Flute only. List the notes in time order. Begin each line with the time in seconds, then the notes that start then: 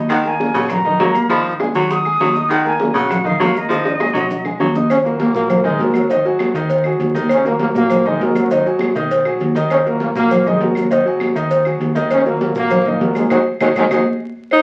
0.12 F#5
0.27 G#5
0.72 A#5
1.30 B5
1.92 D#6
2.51 F#5
2.68 G#5
2.96 F#5
3.26 F5
3.58 D#5